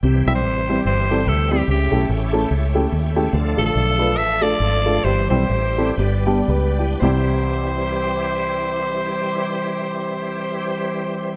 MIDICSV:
0, 0, Header, 1, 6, 480
1, 0, Start_track
1, 0, Key_signature, 0, "major"
1, 0, Tempo, 412655
1, 38, Time_signature, 4, 2, 24, 8
1, 4358, Tempo, 426136
1, 5318, Tempo, 452489
1, 6278, Tempo, 492611
1, 7238, Tempo, 535236
1, 7718, Tempo, 550964
1, 11499, End_track
2, 0, Start_track
2, 0, Title_t, "String section"
2, 0, Program_c, 0, 48
2, 30, Note_on_c, 0, 72, 55
2, 33, Note_on_c, 0, 79, 61
2, 35, Note_on_c, 0, 67, 60
2, 37, Note_on_c, 0, 76, 53
2, 1932, Note_off_c, 0, 72, 0
2, 1934, Note_off_c, 0, 67, 0
2, 1957, Note_on_c, 0, 69, 61
2, 1958, Note_on_c, 0, 73, 57
2, 3835, Note_off_c, 0, 79, 0
2, 3837, Note_off_c, 0, 76, 0
2, 3858, Note_off_c, 0, 73, 0
2, 3864, Note_on_c, 0, 81, 69
2, 3869, Note_on_c, 0, 74, 55
2, 3871, Note_on_c, 0, 77, 56
2, 5756, Note_off_c, 0, 69, 0
2, 5767, Note_off_c, 0, 81, 0
2, 5769, Note_off_c, 0, 74, 0
2, 5770, Note_off_c, 0, 77, 0
2, 5796, Note_on_c, 0, 72, 55
2, 5797, Note_on_c, 0, 67, 58
2, 5798, Note_on_c, 0, 76, 52
2, 5807, Note_on_c, 0, 79, 64
2, 6740, Note_off_c, 0, 72, 0
2, 6741, Note_off_c, 0, 76, 0
2, 6753, Note_on_c, 0, 74, 56
2, 6756, Note_on_c, 0, 71, 55
2, 7704, Note_off_c, 0, 67, 0
2, 7708, Note_off_c, 0, 79, 0
2, 7713, Note_off_c, 0, 74, 0
2, 7713, Note_on_c, 0, 67, 54
2, 7714, Note_off_c, 0, 71, 0
2, 7714, Note_on_c, 0, 72, 55
2, 7714, Note_on_c, 0, 76, 66
2, 7716, Note_on_c, 0, 64, 61
2, 11499, Note_off_c, 0, 64, 0
2, 11499, Note_off_c, 0, 67, 0
2, 11499, Note_off_c, 0, 72, 0
2, 11499, Note_off_c, 0, 76, 0
2, 11499, End_track
3, 0, Start_track
3, 0, Title_t, "Alto saxophone"
3, 0, Program_c, 1, 65
3, 321, Note_on_c, 1, 76, 84
3, 365, Note_off_c, 1, 76, 0
3, 410, Note_on_c, 1, 72, 90
3, 952, Note_off_c, 1, 72, 0
3, 1011, Note_on_c, 1, 72, 89
3, 1492, Note_on_c, 1, 69, 76
3, 1510, Note_off_c, 1, 72, 0
3, 1771, Note_on_c, 1, 67, 64
3, 1789, Note_off_c, 1, 69, 0
3, 1965, Note_off_c, 1, 67, 0
3, 1987, Note_on_c, 1, 67, 71
3, 2419, Note_off_c, 1, 67, 0
3, 4169, Note_on_c, 1, 69, 73
3, 4249, Note_off_c, 1, 69, 0
3, 4256, Note_on_c, 1, 69, 88
3, 4841, Note_on_c, 1, 76, 102
3, 4858, Note_off_c, 1, 69, 0
3, 5120, Note_on_c, 1, 74, 96
3, 5137, Note_off_c, 1, 76, 0
3, 5791, Note_on_c, 1, 72, 86
3, 5807, Note_off_c, 1, 74, 0
3, 6056, Note_off_c, 1, 72, 0
3, 6063, Note_on_c, 1, 72, 75
3, 6705, Note_off_c, 1, 72, 0
3, 7699, Note_on_c, 1, 72, 81
3, 11486, Note_off_c, 1, 72, 0
3, 11499, End_track
4, 0, Start_track
4, 0, Title_t, "Upright piano"
4, 0, Program_c, 2, 0
4, 45, Note_on_c, 2, 48, 63
4, 317, Note_on_c, 2, 64, 56
4, 319, Note_on_c, 2, 55, 66
4, 320, Note_on_c, 2, 60, 56
4, 323, Note_on_c, 2, 67, 64
4, 422, Note_off_c, 2, 64, 0
4, 423, Note_off_c, 2, 55, 0
4, 423, Note_off_c, 2, 60, 0
4, 425, Note_off_c, 2, 67, 0
4, 750, Note_off_c, 2, 48, 0
4, 804, Note_on_c, 2, 55, 57
4, 809, Note_on_c, 2, 64, 54
4, 812, Note_on_c, 2, 67, 63
4, 814, Note_on_c, 2, 60, 56
4, 905, Note_off_c, 2, 55, 0
4, 907, Note_off_c, 2, 64, 0
4, 909, Note_off_c, 2, 60, 0
4, 909, Note_off_c, 2, 67, 0
4, 1284, Note_on_c, 2, 60, 54
4, 1285, Note_on_c, 2, 55, 59
4, 1291, Note_on_c, 2, 64, 53
4, 1292, Note_on_c, 2, 69, 65
4, 1384, Note_off_c, 2, 55, 0
4, 1384, Note_off_c, 2, 60, 0
4, 1387, Note_off_c, 2, 64, 0
4, 1388, Note_off_c, 2, 69, 0
4, 1760, Note_on_c, 2, 55, 60
4, 1761, Note_on_c, 2, 60, 58
4, 1765, Note_on_c, 2, 64, 58
4, 1765, Note_on_c, 2, 67, 66
4, 1862, Note_off_c, 2, 55, 0
4, 1862, Note_off_c, 2, 60, 0
4, 1864, Note_off_c, 2, 64, 0
4, 1864, Note_off_c, 2, 67, 0
4, 1957, Note_on_c, 2, 49, 52
4, 2231, Note_on_c, 2, 57, 67
4, 2233, Note_on_c, 2, 61, 58
4, 2236, Note_on_c, 2, 64, 56
4, 2241, Note_on_c, 2, 67, 73
4, 2337, Note_off_c, 2, 57, 0
4, 2338, Note_off_c, 2, 61, 0
4, 2340, Note_off_c, 2, 64, 0
4, 2342, Note_off_c, 2, 67, 0
4, 2666, Note_off_c, 2, 49, 0
4, 2711, Note_on_c, 2, 57, 76
4, 2717, Note_on_c, 2, 61, 68
4, 2719, Note_on_c, 2, 69, 85
4, 2721, Note_on_c, 2, 64, 68
4, 2818, Note_off_c, 2, 57, 0
4, 2820, Note_off_c, 2, 61, 0
4, 2821, Note_off_c, 2, 69, 0
4, 2822, Note_off_c, 2, 64, 0
4, 3198, Note_on_c, 2, 57, 69
4, 3201, Note_on_c, 2, 64, 66
4, 3204, Note_on_c, 2, 67, 77
4, 3207, Note_on_c, 2, 61, 63
4, 3301, Note_off_c, 2, 57, 0
4, 3303, Note_off_c, 2, 64, 0
4, 3304, Note_off_c, 2, 67, 0
4, 3306, Note_off_c, 2, 61, 0
4, 3679, Note_on_c, 2, 57, 73
4, 3681, Note_on_c, 2, 61, 67
4, 3681, Note_on_c, 2, 67, 82
4, 3683, Note_on_c, 2, 64, 65
4, 3782, Note_off_c, 2, 57, 0
4, 3783, Note_off_c, 2, 61, 0
4, 3783, Note_off_c, 2, 67, 0
4, 3784, Note_off_c, 2, 64, 0
4, 3888, Note_on_c, 2, 50, 62
4, 4158, Note_on_c, 2, 57, 65
4, 4159, Note_on_c, 2, 62, 57
4, 4165, Note_on_c, 2, 65, 59
4, 4166, Note_on_c, 2, 69, 69
4, 4263, Note_off_c, 2, 57, 0
4, 4264, Note_off_c, 2, 62, 0
4, 4267, Note_off_c, 2, 65, 0
4, 4267, Note_off_c, 2, 69, 0
4, 4593, Note_off_c, 2, 50, 0
4, 4628, Note_on_c, 2, 57, 57
4, 4634, Note_on_c, 2, 62, 53
4, 4636, Note_on_c, 2, 65, 58
4, 4640, Note_on_c, 2, 71, 67
4, 4735, Note_off_c, 2, 57, 0
4, 4738, Note_off_c, 2, 62, 0
4, 4739, Note_off_c, 2, 65, 0
4, 4741, Note_off_c, 2, 71, 0
4, 5109, Note_on_c, 2, 57, 60
4, 5115, Note_on_c, 2, 69, 66
4, 5116, Note_on_c, 2, 62, 53
4, 5116, Note_on_c, 2, 65, 55
4, 5218, Note_off_c, 2, 57, 0
4, 5221, Note_off_c, 2, 69, 0
4, 5222, Note_off_c, 2, 62, 0
4, 5222, Note_off_c, 2, 65, 0
4, 5593, Note_on_c, 2, 57, 57
4, 5594, Note_on_c, 2, 62, 51
4, 5597, Note_on_c, 2, 65, 55
4, 5597, Note_on_c, 2, 69, 69
4, 5696, Note_off_c, 2, 57, 0
4, 5696, Note_off_c, 2, 62, 0
4, 5698, Note_off_c, 2, 65, 0
4, 5698, Note_off_c, 2, 69, 0
4, 5798, Note_on_c, 2, 43, 53
4, 6068, Note_on_c, 2, 55, 65
4, 6070, Note_on_c, 2, 64, 62
4, 6072, Note_on_c, 2, 60, 58
4, 6072, Note_on_c, 2, 67, 74
4, 6178, Note_off_c, 2, 55, 0
4, 6178, Note_off_c, 2, 64, 0
4, 6179, Note_off_c, 2, 60, 0
4, 6180, Note_off_c, 2, 67, 0
4, 6511, Note_off_c, 2, 43, 0
4, 6545, Note_on_c, 2, 55, 55
4, 6549, Note_on_c, 2, 64, 52
4, 6550, Note_on_c, 2, 60, 58
4, 6551, Note_on_c, 2, 69, 62
4, 6650, Note_off_c, 2, 55, 0
4, 6652, Note_off_c, 2, 60, 0
4, 6652, Note_off_c, 2, 64, 0
4, 6653, Note_off_c, 2, 69, 0
4, 6752, Note_on_c, 2, 43, 62
4, 7018, Note_on_c, 2, 59, 59
4, 7020, Note_on_c, 2, 55, 68
4, 7022, Note_on_c, 2, 62, 64
4, 7023, Note_on_c, 2, 67, 78
4, 7133, Note_off_c, 2, 59, 0
4, 7134, Note_off_c, 2, 55, 0
4, 7135, Note_off_c, 2, 62, 0
4, 7135, Note_off_c, 2, 67, 0
4, 7244, Note_on_c, 2, 71, 55
4, 7247, Note_on_c, 2, 67, 45
4, 7479, Note_off_c, 2, 43, 0
4, 7494, Note_off_c, 2, 67, 0
4, 7501, Note_off_c, 2, 71, 0
4, 7508, Note_on_c, 2, 67, 54
4, 7512, Note_on_c, 2, 64, 45
4, 7702, Note_on_c, 2, 55, 62
4, 7710, Note_off_c, 2, 64, 0
4, 7715, Note_on_c, 2, 60, 57
4, 7720, Note_on_c, 2, 36, 65
4, 7723, Note_off_c, 2, 67, 0
4, 7724, Note_on_c, 2, 64, 61
4, 7736, Note_on_c, 2, 67, 69
4, 11489, Note_off_c, 2, 55, 0
4, 11499, Note_off_c, 2, 36, 0
4, 11499, Note_off_c, 2, 60, 0
4, 11499, Note_off_c, 2, 64, 0
4, 11499, Note_off_c, 2, 67, 0
4, 11499, End_track
5, 0, Start_track
5, 0, Title_t, "Tonewheel organ"
5, 0, Program_c, 3, 16
5, 34, Note_on_c, 3, 52, 50
5, 34, Note_on_c, 3, 55, 44
5, 44, Note_on_c, 3, 67, 52
5, 48, Note_on_c, 3, 60, 47
5, 1934, Note_off_c, 3, 52, 0
5, 1934, Note_off_c, 3, 55, 0
5, 1941, Note_off_c, 3, 60, 0
5, 1963, Note_on_c, 3, 64, 51
5, 1964, Note_on_c, 3, 61, 48
5, 1968, Note_on_c, 3, 57, 46
5, 3841, Note_off_c, 3, 67, 0
5, 3856, Note_off_c, 3, 57, 0
5, 3861, Note_off_c, 3, 64, 0
5, 3862, Note_off_c, 3, 61, 0
5, 3869, Note_on_c, 3, 69, 59
5, 3870, Note_on_c, 3, 53, 50
5, 3870, Note_on_c, 3, 57, 49
5, 3873, Note_on_c, 3, 62, 48
5, 5769, Note_off_c, 3, 69, 0
5, 5770, Note_off_c, 3, 53, 0
5, 5770, Note_off_c, 3, 57, 0
5, 5771, Note_off_c, 3, 62, 0
5, 5780, Note_on_c, 3, 60, 45
5, 5786, Note_on_c, 3, 55, 45
5, 5787, Note_on_c, 3, 67, 57
5, 5788, Note_on_c, 3, 52, 52
5, 6733, Note_off_c, 3, 60, 0
5, 6736, Note_off_c, 3, 52, 0
5, 6736, Note_on_c, 3, 59, 49
5, 6744, Note_on_c, 3, 62, 54
5, 7699, Note_off_c, 3, 55, 0
5, 7700, Note_off_c, 3, 67, 0
5, 7704, Note_off_c, 3, 59, 0
5, 7708, Note_off_c, 3, 62, 0
5, 7717, Note_on_c, 3, 60, 46
5, 7723, Note_on_c, 3, 52, 51
5, 7723, Note_on_c, 3, 55, 44
5, 7723, Note_on_c, 3, 67, 61
5, 11499, Note_off_c, 3, 52, 0
5, 11499, Note_off_c, 3, 55, 0
5, 11499, Note_off_c, 3, 60, 0
5, 11499, Note_off_c, 3, 67, 0
5, 11499, End_track
6, 0, Start_track
6, 0, Title_t, "Fingered electric bass"
6, 0, Program_c, 4, 33
6, 33, Note_on_c, 4, 36, 82
6, 270, Note_off_c, 4, 36, 0
6, 305, Note_on_c, 4, 35, 73
6, 510, Note_off_c, 4, 35, 0
6, 510, Note_on_c, 4, 33, 69
6, 920, Note_off_c, 4, 33, 0
6, 990, Note_on_c, 4, 31, 70
6, 1475, Note_on_c, 4, 38, 77
6, 1493, Note_off_c, 4, 31, 0
6, 1883, Note_off_c, 4, 38, 0
6, 1952, Note_on_c, 4, 37, 85
6, 2188, Note_off_c, 4, 37, 0
6, 2233, Note_on_c, 4, 35, 73
6, 2405, Note_off_c, 4, 35, 0
6, 2436, Note_on_c, 4, 33, 83
6, 2843, Note_off_c, 4, 33, 0
6, 2917, Note_on_c, 4, 37, 79
6, 3324, Note_off_c, 4, 37, 0
6, 3400, Note_on_c, 4, 39, 78
6, 3807, Note_off_c, 4, 39, 0
6, 3875, Note_on_c, 4, 38, 99
6, 4112, Note_off_c, 4, 38, 0
6, 4160, Note_on_c, 4, 33, 65
6, 4332, Note_off_c, 4, 33, 0
6, 4367, Note_on_c, 4, 35, 78
6, 4834, Note_off_c, 4, 35, 0
6, 4834, Note_on_c, 4, 33, 81
6, 5247, Note_off_c, 4, 33, 0
6, 5318, Note_on_c, 4, 32, 79
6, 5719, Note_off_c, 4, 32, 0
6, 5790, Note_on_c, 4, 31, 81
6, 6028, Note_off_c, 4, 31, 0
6, 6066, Note_on_c, 4, 35, 75
6, 6245, Note_off_c, 4, 35, 0
6, 6270, Note_on_c, 4, 33, 74
6, 6672, Note_off_c, 4, 33, 0
6, 6738, Note_on_c, 4, 31, 81
6, 7160, Note_off_c, 4, 31, 0
6, 7230, Note_on_c, 4, 37, 78
6, 7642, Note_off_c, 4, 37, 0
6, 7713, Note_on_c, 4, 36, 85
6, 11499, Note_off_c, 4, 36, 0
6, 11499, End_track
0, 0, End_of_file